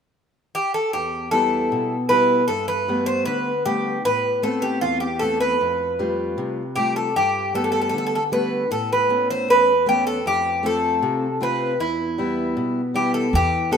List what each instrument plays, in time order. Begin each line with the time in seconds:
0.55 bouzouki G4
0.74 bouzouki A4
0.93 steel-string acoustic guitar E2, bouzouki G4
1.31 steel-string acoustic guitar G3 B3 E4, bouzouki A4
1.72 steel-string acoustic guitar B2
2.09 steel-string acoustic guitar G3 B3 E4, bouzouki B4
2.48 steel-string acoustic guitar G2, bouzouki A4
2.68 bouzouki B4
2.88 steel-string acoustic guitar G3 A3 B3
3.06 bouzouki C5
3.25 steel-string acoustic guitar D3, bouzouki B4
3.66 steel-string acoustic guitar G3 A3 B3, bouzouki G4
4.05 steel-string acoustic guitar A2, bouzouki B4
4.43 steel-string acoustic guitar A3 B3 C4, bouzouki A4
4.62 bouzouki G4
4.81 steel-string acoustic guitar E2, bouzouki F4
5.00 bouzouki G4
5.19 steel-string acoustic guitar A3 B3 C4, bouzouki A4
5.40 bouzouki B4
5.61 steel-string acoustic guitar F2
5.99 steel-string acoustic guitar G3 A3 F4
6.38 steel-string acoustic guitar C3
6.76 steel-string acoustic guitar G3 A3 F4, bouzouki G4
6.96 bouzouki A4
7.16 steel-string acoustic guitar G2, bouzouki G4
7.54 steel-string acoustic guitar G3 A3 B3, bouzouki A4
7.64 bouzouki A4
7.72 bouzouki A4
7.82 bouzouki A4
7.89 bouzouki A4
7.94 steel-string acoustic guitar D3
7.98 bouzouki A4
8.07 bouzouki A4
8.15 bouzouki A4
8.32 steel-string acoustic guitar G3 A3 B3, bouzouki B4
8.71 steel-string acoustic guitar A2, bouzouki A4
8.93 bouzouki B4
9.09 steel-string acoustic guitar A3 B3 C#4
9.30 bouzouki C5
9.48 steel-string acoustic guitar E2, bouzouki B4
9.86 steel-string acoustic guitar A3 B3 C#4, bouzouki G4
10.07 bouzouki A4
10.26 steel-string acoustic guitar F2, bouzouki G4
10.63 steel-string acoustic guitar A3 C4 F4, bouzouki A4
11.02 steel-string acoustic guitar C3
11.41 steel-string acoustic guitar A3 C4 F4, bouzouki B4
11.80 steel-string acoustic guitar E2, bouzouki E4
12.18 steel-string acoustic guitar G3 B3 E4
12.57 steel-string acoustic guitar B2
12.94 steel-string acoustic guitar G3 B3 E4, bouzouki G4
13.14 bouzouki A4
13.33 upright bass E2, steel-string acoustic guitar E3, bouzouki G4
13.71 steel-string acoustic guitar B3 E4 G4, bouzouki A4